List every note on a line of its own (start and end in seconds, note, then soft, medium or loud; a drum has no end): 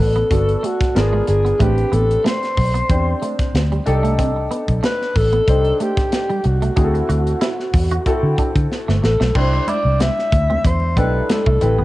0.00 0.22 A1 medium
0.00 0.30 B3 medium
0.00 0.31 D4 medium
0.00 0.31 F#4 medium
0.00 0.31 A4 medium
0.00 0.67 A4 medium
0.16 0.25 B3 medium
0.16 closed hi-hat soft
0.30 0.55 G1 medium
0.30 0.93 B3 medium
0.30 0.94 D4 medium
0.30 0.96 F#4 medium
0.30 0.96 A4 medium
0.30 kick medium
0.30 closed hi-hat medium
0.49 closed hi-hat soft
0.63 0.74 A3 medium
0.63 0.98 F#4 medium
0.63 closed hi-hat medium
0.81 kick medium
0.81 snare soft
0.81 closed hi-hat soft
0.95 1.20 G#1 medium
0.95 1.48 B3 medium
0.95 1.48 D4 medium
0.95 1.48 F4 medium
0.95 1.28 G#4 medium
0.95 1.49 A#4 medium
0.95 snare loud
0.95 closed hi-hat medium
1.13 1.22 G#3 medium
1.27 1.52 G1 medium
1.27 1.63 G#4 medium
1.27 muted clean electric guitar stroke soft
1.27 closed hi-hat medium
1.45 1.54 B3 medium
1.45 closed hi-hat soft
1.59 1.84 A1 medium
1.59 1.71 A3 medium
1.59 2.51 C4 medium
1.59 2.51 D4 medium
1.59 2.52 G4 medium
1.59 1.95 G4 medium
1.59 2.52 B4 medium
1.59 kick medium
1.59 closed hi-hat medium
1.78 muted clean electric guitar stroke soft
1.78 closed hi-hat soft
1.92 2.16 A1 medium
1.92 2.03 B3 medium
1.92 2.27 A4 medium
1.92 closed hi-hat medium
2.11 closed hi-hat soft
2.25 2.35 A3 medium
2.25 3.22 C5 loud
2.25 snare loud
2.25 closed hi-hat medium
2.43 snare soft
2.43 closed hi-hat soft
2.57 2.81 B1 medium
2.57 muted clean electric guitar stroke soft
2.57 kick medium
2.57 open hi-hat medium
2.74 2.84 B3 medium
2.74 closed hi-hat soft
2.89 3.13 E2 medium
2.89 3.81 C4 medium
2.89 3.81 D4 medium
2.89 3.81 G4 medium
2.89 3.81 C5 medium
2.89 kick medium
2.89 closed hi-hat medium
3.22 3.33 A3 medium
3.22 closed hi-hat medium
3.39 kick medium
3.39 snare soft
3.39 closed hi-hat medium
3.54 3.78 D2 medium
3.54 snare loud
3.54 closed hi-hat medium
3.72 3.81 G3 medium
3.72 closed hi-hat soft
3.86 4.47 C2 medium
3.86 4.90 D4 medium
3.86 4.90 D#4 medium
3.86 4.90 G4 medium
3.86 4.90 A4 medium
3.86 muted clean electric guitar stroke soft
3.86 closed hi-hat medium
4.03 4.13 A3 medium
4.03 closed hi-hat soft
4.19 4.29 C4 medium
4.19 kick medium
4.19 closed hi-hat medium
4.36 muted clean electric guitar stroke soft
4.51 4.62 B3 medium
4.51 closed hi-hat medium
4.68 4.79 B1 medium
4.68 kick medium
4.68 closed hi-hat soft
4.83 4.94 A3 medium
4.83 5.18 B4 medium
4.83 snare loud
4.83 closed hi-hat medium
5.01 snare soft
5.15 5.39 A1 medium
5.15 5.83 A4 loud
5.15 muted clean electric guitar stroke soft
5.15 kick medium
5.15 open hi-hat medium
5.33 5.42 B3 medium
5.33 closed hi-hat soft
5.47 5.71 C2 medium
5.47 6.39 D4 medium
5.47 6.39 D#4 medium
5.47 6.39 G4 medium
5.47 6.40 C5 medium
5.47 kick medium
5.47 closed hi-hat medium
5.65 closed hi-hat soft
5.80 5.91 A3 medium
5.80 6.47 G4 medium
5.80 closed hi-hat medium
5.97 kick loud
5.97 snare soft
5.97 closed hi-hat medium
6.12 snare loud
6.12 closed hi-hat loud
6.30 6.39 G3 medium
6.30 closed hi-hat soft
6.44 6.69 C2 medium
6.44 8.71 F#4 medium
6.44 muted clean electric guitar stroke soft
6.44 closed hi-hat medium
6.62 6.71 A3 medium
6.62 closed hi-hat medium
6.76 7.01 D2 medium
6.76 7.68 C4 medium
6.76 6.87 D4 medium
6.76 7.68 E4 medium
6.76 7.68 F#4 medium
6.76 6.84 G#4 medium
6.76 kick medium
6.76 closed hi-hat medium
6.84 7.72 A4 medium
6.94 muted clean electric guitar stroke soft
6.94 closed hi-hat soft
7.09 7.33 D2 medium
7.09 7.20 F#4 medium
7.09 closed hi-hat medium
7.27 closed hi-hat soft
7.41 7.52 E4 medium
7.41 snare loud
7.41 closed hi-hat loud
7.60 snare soft
7.73 7.97 E2 medium
7.73 muted clean electric guitar stroke soft
7.73 kick medium
7.73 open hi-hat medium
7.91 8.01 F#4 medium
7.91 closed hi-hat soft
8.06 8.97 C4 medium
8.06 8.97 E4 medium
8.06 8.98 F#4 medium
8.06 8.98 A4 medium
8.06 kick medium
8.06 closed hi-hat medium
8.23 8.34 D3 medium
8.38 8.49 D4 medium
8.38 kick medium
8.38 closed hi-hat medium
8.56 8.67 D3 medium
8.56 kick medium
8.56 closed hi-hat medium
8.72 snare medium
8.88 8.99 G1 medium
8.88 8.97 A3 medium
8.88 snare soft
9.02 9.16 A1 medium
9.02 9.38 A4 medium
9.02 muted clean electric guitar stroke soft
9.02 snare medium
9.20 9.31 B1 medium
9.20 9.29 A3 medium
9.20 snare medium
9.35 9.59 C2 medium
9.35 9.46 C4 medium
9.35 10.27 D4 medium
9.35 10.27 E4 medium
9.35 10.27 G4 medium
9.35 10.27 C5 medium
9.35 9.68 C5 medium
9.35 kick loud
9.35 crash medium
9.53 muted clean electric guitar stroke soft
9.53 muted conga soft
9.67 9.79 E4 medium
9.67 10.03 D5 medium
9.67 closed hi-hat medium
9.67 high conga medium
9.85 10.09 C2 medium
9.99 10.11 B3 medium
9.99 10.67 E5 medium
9.99 snare loud
9.99 closed hi-hat medium
9.99 muted conga soft
9.99 high conga medium
10.18 snare soft
10.18 muted conga soft
10.32 10.56 D2 medium
10.32 muted clean electric guitar stroke soft
10.32 kick medium
10.32 closed hi-hat medium
10.50 10.59 C4 medium
10.50 high conga medium
10.50 low conga medium
10.65 10.98 E2 medium
10.65 10.97 C5 loud
10.65 kick medium
10.65 closed hi-hat medium
10.80 muted conga soft
10.95 11.20 B1 medium
10.95 11.08 B3 medium
10.95 11.61 D4 medium
10.95 11.04 D#4 soft
10.95 11.60 G4 medium
10.95 11.62 A4 medium
10.95 11.32 B4 medium
10.95 kick medium
10.95 closed hi-hat medium
10.95 high conga soft
11.04 11.60 E4 medium
11.30 11.85 A4 medium
11.30 snare loud
11.30 closed hi-hat loud
11.30 muted conga soft
11.30 high conga medium
11.46 11.57 C2 medium
11.46 11.56 A3 medium
11.46 kick medium
11.61 11.80 A1 loud
11.61 11.85 C4 medium
11.61 11.85 E4 medium
11.61 11.85 G4 medium
11.61 11.85 B4 medium
11.61 muted clean electric guitar stroke soft
11.61 closed hi-hat medium
11.61 low conga medium
11.79 11.85 G1 medium
11.79 11.85 B3 medium